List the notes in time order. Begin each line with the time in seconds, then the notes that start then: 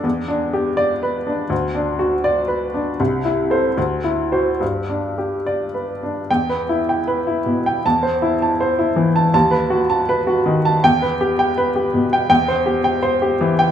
0.04 E2
0.28 D4
0.53 G4
0.77 D5
1.03 B4
1.27 D4
1.50 D2
1.75 D4
1.99 F#4
2.24 D5
2.48 B4
2.74 D4
3.00 C2
3.25 E4
3.50 A4 C5
3.77 D2
4.04 E4
4.32 F#4 C5
4.61 G2
4.89 D4
5.18 G4
5.46 D5
5.74 B4
6.03 D4
6.30 E2 G5
6.49 B4
6.69 E4
6.89 G5
7.08 B4
7.27 E4
7.46 B2
7.66 G5
7.86 E2 A5
8.03 C5
8.22 E4
8.42 A5
8.60 C5
8.79 E4
8.96 E3
9.16 A5
9.34 D#2 A5
9.51 B4
9.70 F#4
9.90 A5
10.09 B4
10.27 F#4
10.46 D#3
10.65 A5
10.84 E2 G5
11.02 B4
11.21 G4
11.39 G5
11.58 B4
11.76 G4
11.94 B2
12.13 G5
12.30 E2 G5
12.48 C5
12.66 G4
12.84 G5
13.03 C5
13.22 G4
13.41 E3
13.59 G5